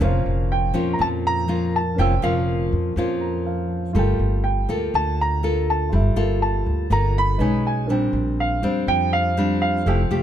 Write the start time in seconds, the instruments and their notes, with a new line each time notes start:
0.00 upright bass F1, nylon-string guitar A#2 F3 A#3 C#4 F4, grand piano C#4 A#4 C5
0.05 grand piano F5
0.26 upright bass F1
0.52 grand piano G5
0.74 upright bass F2, nylon-string guitar F3 A#3 C#4 F4
0.93 grand piano A#5
0.99 upright bass F2, nylon-string guitar A#2, grand piano A5
1.27 grand piano A#5
1.48 nylon-string guitar F3 A#3 C#4 F4
1.76 grand piano A5
1.95 upright bass F1, nylon-string guitar A#2, grand piano C#4 A#4
1.99 nylon-string guitar F3 A#3 C#4 F4, grand piano C5 G5 E6
2.22 upright bass F1, nylon-string guitar F3 A#3 C#4 F4, grand piano F5
2.72 upright bass F2
2.96 upright bass F2, nylon-string guitar A#2 F3 A#3 C#4 F4
3.21 grand piano A#5
3.46 grand piano F5
3.93 upright bass G1, nylon-string guitar G3 A#3 F4 A4, grand piano A3 F4
3.99 grand piano G5
4.19 upright bass G1
4.44 grand piano G5
4.69 upright bass D2, nylon-string guitar A#3 F4 A4
4.94 upright bass D2, nylon-string guitar D3, grand piano A5
5.21 grand piano A#5
5.43 nylon-string guitar A#3 F4 A4
5.70 grand piano A5
5.89 upright bass G1, nylon-string guitar G3, grand piano F4 A4
5.95 grand piano E5
6.16 upright bass G1, nylon-string guitar A#3 F4 A4
6.42 grand piano A5
6.66 upright bass D2
6.90 upright bass G1, nylon-string guitar D3 A#3 F4 A4, grand piano A#5
7.18 grand piano B5
7.38 upright bass B1, nylon-string guitar G#3 C#4 D#4, grand piano D#4 B4 C#5 G#5
7.67 grand piano G#5
7.86 upright bass A#1, nylon-string guitar A#2 G3 C4, grand piano D4 A#4 C5
7.90 nylon-string guitar D4, grand piano G5
8.13 upright bass A#1
8.40 grand piano F5
8.62 upright bass F2, nylon-string guitar G3 C4 D4
8.87 upright bass F2, nylon-string guitar F3, grand piano G5
9.13 grand piano F5
9.37 nylon-string guitar G3 C4 D4
9.62 grand piano F5
9.85 upright bass F1, nylon-string guitar F3 A3 E4 G4, grand piano A4 E6
9.89 grand piano G5
10.11 upright bass F1, nylon-string guitar A3 G4